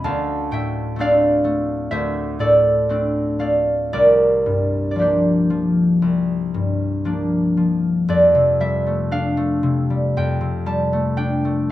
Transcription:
0.04 D2 F5 A5
0.51 A2 E5 G5
0.96 A3 C4 D4
1.00 D5 F5
1.44 A3
1.91 D2 C5 E5
2.39 A2 A4 D5
2.89 A3 C4 D4
3.39 A3 D5 F5
3.93 C2 A#4 D5
4.46 G2
4.91 D5
4.96 F3 A#3 D4 G4
5.01 C5
5.50 F3
6.02 C2
6.54 G2
7.05 F3 A#3 D4
7.57 F3
8.09 F2 D5
8.35 C3
8.60 G3 E5
8.87 A3
9.11 D4 F5
9.37 A3
9.63 C3
9.90 G3
10.17 F2 G5
10.41 C3
10.66 G3 A5
10.93 A3
11.17 D4 G5
11.45 A3

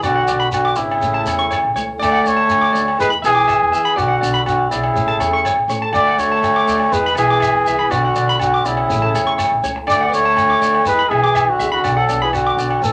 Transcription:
0.02 B1 D3 F#3 B3 D4 F#4 D5, low agogo, shekere
0.15 F#5
0.27 B1 F#3 B3 D4 D5, shekere
0.40 B5
0.50 F#3 B3 D4 F#4, low agogo, shekere
0.55 D3
0.65 D6
0.75 G#1 C#3 F#3 B3 D4 E4, muted clean electric guitar stroke, shekere
0.91 low agogo
1.01 A1 E3 A3 C#4, shekere
1.14 A5
1.24 E2 E3 A3 C#4 C#5, low agogo, shekere
1.38 C#4 C#6, muted steel-string acoustic guitar stroke
1.51 C#5, low agogo, shekere
1.64 A1
1.75 C#2 E3 A3 C#4 C#5, shekere
1.98 D2 A3 D4 D5, muted steel-string acoustic guitar stroke
2.03 A3 D5, low agogo, shekere
2.12 F#5
2.22 D2 A3 D4 F#4 D5
2.26 A3 C#5, shekere
2.37 A5
2.47 A3 D4 F#4, shekere
2.51 low agogo
2.61 D6
2.71 D2 A3 D4 F#4 D5
2.75 shekere
2.88 low agogo
2.97 E2 E3 G#3 E4 G#4 B4, muted steel-string acoustic guitar stroke, shekere
3.10 B5
3.22 B1 E3 B3 E4 G#4 E5, low agogo, shekere
3.26 E3
3.34 B3 E4 G#4 D6
3.48 E5, low agogo, shekere
3.63 E2
3.69 B3 E4 G#4 E5, muted steel-string acoustic guitar stroke
3.74 E3, shekere
3.85 B5
3.95 B1 F#3 B3 D4 F#4 D5, low agogo, shekere
4.00 D3
4.08 F#5
4.21 B1 F#3 B3 D4 F#4 D5, shekere
4.34 B5
4.44 F#3 B3 D4 F#4, low agogo, shekere
4.48 D3
4.70 B1 C#3 B3 D4 E4 F#4 D5, shekere
4.84 low agogo
4.94 A1 E3 A3 C#4 A4, shekere
5.08 A5
5.18 E2 E3 A3 C#4 A4 C#5, low agogo, shekere
5.29 A3 C#4 A4 C#6
5.45 C#5, low agogo, shekere
5.56 A1
5.68 A2 E3 A3 C#4 A4 C#5, shekere
5.82 A5
5.91 D2 F#3 A3 D4 F#4 D5, low agogo, shekere
6.07 F#5
6.17 D2 F#3 A3 D4 F#4 C#5 D5, shekere
6.32 A5
6.40 F#3 A3 D4 F#4, shekere
6.44 low agogo
6.56 D6
6.65 D2 F#3 A3 D4 F#4 D5, shekere
6.79 low agogo
6.91 E2 E3 G#3 B3 E4 G#4 B4, shekere
7.06 B5
7.15 B1 E3 B3 G#4 E5, muted steel-string acoustic guitar stroke, low agogo, shekere
7.29 B3 E4 G#4 D6
7.40 E5, low agogo, shekere
7.53 E2
7.64 C2 E3 B3 E4 G#4 E5, shekere
7.79 B5
7.90 B1 F#3 B3 D4 F#4 D5, low agogo, shekere
7.95 D3
8.04 F#5
8.14 B1 F#3 B3 D4 D5, shekere
8.29 B5
8.38 D3 F#3 D4 F#4, muted steel-string acoustic guitar stroke, low agogo, shekere
8.54 D6
8.64 B1 C#3 F#3 B3 D4 E4 F#4 D5, shekere
8.77 low agogo
8.87 A1 E3 A3 C#4 A4, shekere
9.02 A5
9.13 E2 E3 A3 C#4 A4 C#5, low agogo, shekere
9.24 C#4 C#6, muted steel-string acoustic guitar stroke
9.38 C#5, low agogo, shekere
9.52 A1
9.61 C#2 E3 A3 C#4 A4 C#5, shekere
9.76 muted clean electric guitar stroke
9.87 D2 A3 D4 F#4 D5, low agogo, shekere
10.01 F#5
10.05 B3 D5
10.11 D2 A3 D4 F#4 C#5 D5, shekere
10.25 A5
10.34 A3 D4 F#4, low agogo, shekere
10.50 D6
10.59 D2 A3 D4 F#4 D5, shekere
10.74 low agogo
10.85 E2 E3 G#3 E4 G#4 B4, shekere
10.99 B5
11.09 B1 E3 B3 E4 G#4 E5, low agogo
11.14 E3
11.22 B3 E4 G#4 D6
11.35 E5, low agogo, shekere
11.47 E2 D3 F#4
11.59 C#2 E3 B3 E4 G#4 E5, shekere
11.72 D3 F#4 B5
11.82 B1 B3 D4 D5, muted steel-string acoustic guitar stroke, low agogo, shekere
11.97 F#3 A4 F#5
12.07 B1 F#3 B3 D4 D5, shekere
12.22 E3 G#4 B5
12.31 F#3 B3 D4 F#4, low agogo, shekere
12.35 D3
12.47 D6
12.55 B1 F#3 B3 D4 D5, shekere
12.70 low agogo
12.80 A1 E3 A3 C#4 A4, shekere

